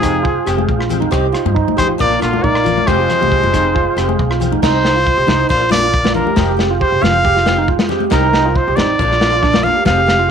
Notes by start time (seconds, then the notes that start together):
Already playing: F1 F3 G#4 F5 G5
0.02 G#3 C4 D#4 G4, kick, cross-stick, closed hi-hat, low conga
0.23 F4, kick
0.46 F1 G#3 C4 G4, cross-stick, closed hi-hat
0.57 G#4, high conga
0.69 A#1, kick
0.79 F4, cross-stick
0.89 G#3 C4 G4, closed hi-hat, low conga
1.00 D#4, high conga
1.11 C2 C4 D#4 G4 C5 D#5, kick, cross-stick
1.32 D#4 F4 G4, cross-stick, closed hi-hat
1.45 G2, high conga
1.54 D#4, kick
1.67 A1, high conga
1.77 G#3 D#4 G4 C5, kick, cross-stick, closed hi-hat, low conga
1.88 F4
1.98 A#1 F3 A#3 D4 A#4 D5 F5, muted steel-string acoustic guitar stroke, kick
2.10 A#3
2.19 A#1 D3 D4 F4, cross-stick, closed hi-hat
2.23 muted steel-string acoustic guitar stroke
2.33 F4, high conga
2.43 A#1 A#3 D#4 D5, kick
2.55 cross-stick
2.64 A#3 F4, closed hi-hat, low conga
2.78 high conga
2.87 F1 F3 G#3 C4 G4 G#4 C5 F5 G5, kick, cross-stick
2.99 F4
3.09 C4, muted steel-string acoustic guitar stroke, cross-stick, closed hi-hat, low conga
3.21 C2 G4, high conga
3.32 kick
3.43 F1 F4, high conga
3.53 G#3 C4 D#4 G4, kick, cross-stick, closed hi-hat, low conga
3.75 F4, kick
3.96 F1 G#3 C4 G4, cross-stick, closed hi-hat
4.08 G#4, high conga
4.19 B1, kick
4.30 F4, cross-stick
4.40 G#3 C4 G4, closed hi-hat, low conga
4.52 D#4, high conga
4.62 C2 C4 D#4 G4 C5 D#5 G5, kick, snare, crash
4.83 D#4 G4, snare
4.96 F4
5.07 kick
5.17 C2 G4
5.27 C2 D#4 G4, snare, low conga
5.49 A#1 F3 A#3 D4 F4 A#4 C5 D5 F5, kick
5.61 F4
5.70 A#3 D4 F4 D5, snare, high conga
5.83 F4
5.94 kick
6.04 F4, snare, high conga
6.14 D4 F4 A#4, muted steel-string acoustic guitar stroke, low conga
6.27 G4, high conga
6.36 F1 F3 G#3 C4 G4 G#4 G5, kick, snare
6.49 G4
6.57 G#3 C4 G4, snare
6.71 F4
6.81 G4 C5, kick
6.92 F1
7.01 F1 C4 F4 G4 F5, snare, low conga
7.05 G#3
7.25 G4, kick
7.36 F4, snare
7.46 G#3 C4 G4, snare, high conga
7.58 D#4
7.68 F4, kick
7.79 snare, high conga
7.89 G#3 C4 G4, snare, low conga
8.00 high conga
8.10 C2 G3 C4 D#4 G4 A#4 C5 D#5, kick, snare
8.33 C4 D#4 G4, snare
8.45 F4
8.56 C5, kick
8.68 C2 G4
8.76 A1 D#4 G4 D5, snare, low conga
8.80 C4
8.99 A#1 F3 A#3 D4 F4 A#4 D5 F5, kick
9.11 F4, snare
9.21 D4 F4, snare
9.32 F4
9.43 D4, kick, snare
9.53 F4, snare, high conga
9.63 A#3 D4 F4 F5, low conga
9.77 G4
9.85 F1 F3 G#3 C4 G4 G#4 F5 G5, kick, snare, low conga
9.98 G4
10.06 G#3 C4 G4, snare
10.19 F4